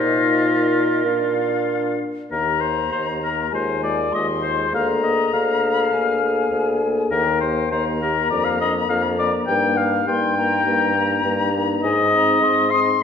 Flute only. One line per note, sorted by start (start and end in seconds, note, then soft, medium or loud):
0.00 1.07 D#5 medium
1.06 2.00 F5 medium
2.30 3.48 A#5 soft
3.51 4.14 G#5 soft
4.12 4.72 C6 soft
4.73 5.95 A#5 medium
5.93 7.15 G#5 soft
7.13 7.73 G5 soft
7.72 9.80 A#5 medium
10.08 10.35 C6 medium
10.38 11.82 A#5 medium
11.84 12.13 G#5 medium
12.14 12.45 A#5 medium
12.43 12.73 C6 medium
12.73 12.80 D#6 medium